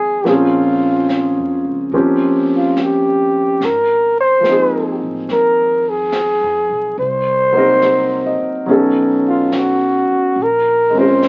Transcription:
0.00 0.21 G#1 medium
0.00 0.22 F3 soft
0.00 0.26 G#3 soft
0.00 0.23 A#3 soft
0.00 0.25 C4 soft
0.00 0.27 D#4 soft
0.00 0.28 F4 soft
0.00 0.30 G#4 medium
0.00 0.27 G5 soft
0.24 1.33 A#1 medium
0.24 1.92 F3 soft
0.24 1.92 A#3 soft
0.24 1.93 C4 soft
0.24 1.93 C#4 soft
0.24 brush sweep soft
0.24 snare soft
0.28 1.95 F4 medium
0.28 1.95 G#4 medium
1.09 snare soft
1.09 hi-hat pedal soft
1.37 1.63 F2 soft
1.65 1.91 C#2 medium
1.92 3.56 D#2 medium
1.92 3.60 F3 medium
1.92 3.61 A#3 soft
1.92 3.61 C4 soft
1.92 3.61 C#4 soft
1.92 3.61 G4 medium
1.92 brush sweep soft
2.56 2.84 F4 medium
2.77 snare soft
2.77 hi-hat pedal soft
2.83 3.66 G4 medium
3.60 4.97 G#1 medium
3.60 brush sweep soft
3.60 snare soft
3.65 4.19 A#4 medium
4.20 4.99 C5 medium
4.40 6.95 F3 soft
4.40 6.97 A#3 soft
4.44 6.98 C4 soft
4.44 snare soft
4.44 hi-hat pedal soft
4.49 7.00 D#4 soft
4.49 7.01 G#4 soft
5.02 5.27 A1 medium
5.29 6.37 D#2 medium
5.29 5.91 A#4 medium
5.29 brush sweep soft
5.29 snare soft
5.90 6.99 G#4 medium
6.12 snare soft
6.12 hi-hat pedal soft
6.41 6.67 F2 soft
6.69 6.95 B1 soft
6.97 8.35 C2 medium
6.97 8.64 C5 medium
6.97 brush sweep soft
7.52 8.65 F#3 soft
7.52 8.66 A#3 soft
7.52 8.67 C4 soft
7.52 8.68 D#4 soft
7.58 8.68 A#4 soft
7.82 8.50 C5 soft
7.82 snare soft
7.82 hi-hat pedal soft
8.26 8.85 D#5 soft
8.39 muted upright bass stroke soft
8.66 10.05 B1 medium
8.66 10.37 F#3 soft
8.66 10.38 B3 soft
8.66 10.38 C#4 soft
8.66 brush sweep soft
8.70 10.39 D#4 soft
8.70 10.39 A4 soft
9.28 9.59 F4 medium
9.52 snare soft
9.52 hi-hat pedal soft
9.58 10.44 F#4 medium
10.09 muted upright bass stroke soft
10.36 11.28 A#1 medium
10.36 brush sweep soft
10.43 11.00 A#4 medium
10.90 11.28 G#3 soft
10.90 11.28 C4 soft
10.95 11.28 C#4 soft
10.95 11.28 F4 soft
10.95 11.28 C5 medium
11.00 11.28 A#4 soft
11.22 snare soft
11.22 hi-hat pedal soft

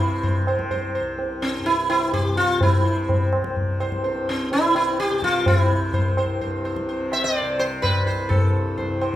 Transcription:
0.00 1.00 C2 medium
0.00 1.59 G2 medium
0.00 0.41 C3 medium
0.00 0.43 E4 medium
0.00 0.21 C5 soft
0.23 0.45 C5 soft
0.23 tabla tin medium
0.23 tabla ge medium
0.41 2.17 C3 medium
0.47 0.69 C5 soft
0.47 tabla na medium
0.59 tabla ke medium
0.71 0.93 C5 soft
0.71 tabla tin medium
0.71 tabla ge medium
0.95 1.17 C5 soft
1.00 3.33 C2 medium
1.19 tabla tin medium
1.42 1.67 C4 medium
1.42 tabla na medium
1.59 3.92 G2 medium
1.66 1.88 E4 medium
1.66 tabla tin medium
1.90 2.13 E4 medium
1.90 tabla na medium
2.13 2.76 C3 medium
2.13 2.37 G4 medium
2.13 tabla na medium
2.13 tabla ge medium
2.37 2.59 F4 medium
2.37 tabla te soft
2.61 3.29 E4 medium
2.61 tabla tin medium
2.61 tabla ge medium
2.76 4.50 C3 medium
2.85 3.07 C5 soft
3.09 tabla tin medium
3.09 tabla ge medium
3.33 5.67 C2 medium
3.33 tabla na medium
3.44 tabla ke medium
3.56 tabla tin medium
3.56 tabla ge medium
3.80 4.02 C5 soft
3.80 tabla na medium
3.92 6.24 G2 medium
3.92 tabla ke medium
4.04 4.26 C5 soft
4.04 tabla tin medium
4.29 4.50 C4 medium
4.50 5.10 C3 soft
4.50 4.75 E4 medium
4.50 tabla tin medium
4.75 4.99 E4 medium
4.75 tabla na medium
4.99 5.23 G4 loud
4.99 tabla te medium
5.10 6.83 C3 medium
5.10 tabla te medium
5.22 5.47 F4 medium
5.22 tabla ke medium
5.34 tabla te medium
5.46 6.14 E4 medium
5.46 tabla tin loud
5.46 tabla ge medium
5.67 8.00 C2 medium
5.93 6.16 C5 soft
5.93 tabla tin medium
5.93 tabla ge medium
6.17 6.40 C5 soft
6.17 tabla na medium
6.25 8.30 G2 medium
6.41 6.63 C5 soft
6.41 tabla tin medium
6.41 tabla ge medium
6.65 6.87 C5 soft
6.65 tabla na soft
6.76 tabla ke medium
6.83 7.41 C3 medium
6.88 7.11 C5 soft
6.88 tabla tin medium
7.12 7.35 C5 soft
7.12 7.24 E5 medium
7.12 tabla na medium
7.24 7.57 D5 medium
7.36 7.58 C5 soft
7.36 tabla tin medium
7.41 8.88 C3 medium
7.59 7.82 C5 medium
7.59 tabla na medium
7.82 8.31 B4 medium
7.82 8.05 C5 soft
7.82 tabla na medium
7.82 tabla ge medium
8.01 9.16 C2 medium
8.06 8.29 C5 soft
8.06 tabla te medium
8.29 9.16 G2 medium
8.29 8.96 A4 medium
8.29 tabla tin loud
8.29 tabla ge medium
8.78 8.99 C5 soft
8.78 tabla tin medium
8.78 tabla ge medium
8.88 9.16 C3 medium
9.01 9.16 C5 soft
9.01 tabla na medium

